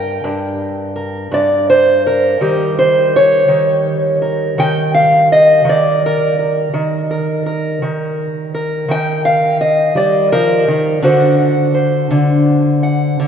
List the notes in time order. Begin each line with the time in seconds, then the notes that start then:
Already playing: G2 A#4 G5
0.24 G2
0.96 A#4
1.31 G2 D5
1.70 C5
2.07 A#4
2.41 D#3 G3 G4
2.79 C5
3.16 C#5
3.48 D#3
4.22 A#4
4.58 D#3 G5
4.94 F5
5.32 D#5
5.65 D#3
5.69 D5
6.06 A#4
6.39 A#4
6.74 D#3
7.11 A#4
7.46 A#4
7.82 D#3
8.54 A#4
8.88 D#3 G5
9.25 F5
9.61 D#5
9.95 G3 D5
10.32 F3 A#4
10.68 D#3
11.03 D3 D4 F#4 C5 F#5
11.38 F#5
11.74 C5
12.11 D3
12.83 F#5
13.20 D3